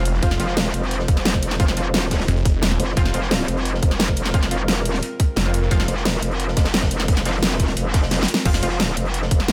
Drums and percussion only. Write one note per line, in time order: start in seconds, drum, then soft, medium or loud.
0.05 closed hi-hat loud
0.05 closed hi-hat medium
0.14 snare soft
0.22 kick loud
0.22 closed hi-hat medium
0.31 snare medium
0.31 snare soft
0.40 closed hi-hat medium
0.48 snare soft
0.57 snare loud
0.57 closed hi-hat medium
0.57 open hi-hat medium
0.66 snare medium
0.74 closed hi-hat medium
0.83 closed hi-hat soft
0.91 closed hi-hat medium
0.99 snare medium
1.08 kick loud
1.08 closed hi-hat medium
1.17 snare soft
1.25 snare loud
1.25 closed hi-hat medium
1.34 kick medium
1.34 snare soft
1.42 closed hi-hat medium
1.51 snare medium
1.51 snare soft
1.60 kick loud
1.60 closed hi-hat medium
1.68 snare medium
1.68 snare soft
1.77 closed hi-hat medium
1.94 snare loud
1.94 closed hi-hat medium
2.03 closed hi-hat soft
2.10 kick medium
2.10 snare loud
2.10 closed hi-hat medium
2.10 open hi-hat medium
2.20 snare soft
2.20 snare medium
2.28 closed hi-hat medium
2.37 closed hi-hat soft
2.45 kick loud
2.45 closed hi-hat medium
2.62 snare loud
2.62 closed hi-hat medium
2.71 snare soft
2.80 closed hi-hat medium
2.89 snare soft
2.96 kick loud
2.96 closed hi-hat medium
3.05 snare medium
3.05 snare soft
3.14 closed hi-hat medium
3.23 snare soft
3.31 snare loud
3.31 closed hi-hat medium
3.31 open hi-hat medium
3.39 snare medium
3.48 closed hi-hat medium
3.57 closed hi-hat soft
3.65 closed hi-hat medium
3.74 snare medium
3.82 kick loud
3.82 closed hi-hat medium
3.91 snare soft
3.99 snare loud
3.99 closed hi-hat medium
4.08 kick medium
4.08 snare soft
4.16 closed hi-hat medium
4.25 snare medium
4.25 snare soft
4.34 kick loud
4.34 closed hi-hat medium
4.42 snare medium
4.42 snare soft
4.51 closed hi-hat medium
4.68 snare loud
4.68 closed hi-hat medium
4.76 closed hi-hat soft
4.85 closed hi-hat medium
4.94 snare soft
5.03 closed hi-hat medium
5.20 kick loud
5.20 closed hi-hat medium
5.20 closed hi-hat loud
5.36 snare loud
5.36 closed hi-hat medium
5.45 snare soft
5.54 closed hi-hat medium
5.54 closed hi-hat loud
5.62 snare soft
5.71 kick loud
5.71 closed hi-hat loud
5.71 closed hi-hat medium
5.79 snare medium
5.79 snare soft
5.88 closed hi-hat medium
5.97 snare soft
6.05 snare loud
6.05 closed hi-hat medium
6.05 open hi-hat medium
6.14 snare medium
6.22 closed hi-hat medium
6.22 closed hi-hat loud
6.31 closed hi-hat soft
6.40 closed hi-hat medium
6.48 snare medium
6.57 kick loud
6.57 snare loud
6.57 closed hi-hat loud
6.57 open hi-hat medium
6.65 snare loud
6.65 snare soft
6.65 open hi-hat medium
6.74 snare loud
6.74 closed hi-hat medium
6.74 open hi-hat medium
6.82 kick medium
6.82 snare loud
6.82 snare soft
6.82 open hi-hat medium
6.91 closed hi-hat medium
6.91 closed hi-hat loud
7.00 snare medium
7.00 snare soft
7.08 kick loud
7.08 closed hi-hat medium
7.17 snare medium
7.17 snare soft
7.25 snare loud
7.25 closed hi-hat medium
7.25 open hi-hat medium
7.35 snare soft
7.43 snare loud
7.43 closed hi-hat medium
7.51 snare medium
7.51 open hi-hat medium
7.60 kick medium
7.60 snare soft
7.60 closed hi-hat loud
7.68 snare soft
7.68 closed hi-hat medium
7.77 closed hi-hat medium
7.94 kick loud
7.94 snare loud
7.94 closed hi-hat loud
7.94 open hi-hat medium
8.02 snare loud
8.02 open hi-hat medium
8.11 snare loud
8.11 snare medium
8.11 closed hi-hat medium
8.11 open hi-hat medium
8.20 snare loud
8.20 open hi-hat medium
8.23 snare medium
8.28 closed hi-hat medium
8.28 closed hi-hat loud
8.34 snare loud
8.36 snare medium
8.45 kick loud
8.45 closed hi-hat medium
8.45 crash loud
8.54 snare medium
8.63 closed hi-hat medium
8.71 snare soft
8.79 snare loud
8.79 closed hi-hat medium
8.79 open hi-hat medium
8.88 snare medium
8.97 closed hi-hat medium
8.97 closed hi-hat loud
9.05 closed hi-hat soft
9.14 closed hi-hat medium
9.22 snare medium
9.31 kick loud
9.31 closed hi-hat medium
9.31 closed hi-hat loud
9.40 snare soft
9.48 snare loud
9.48 closed hi-hat medium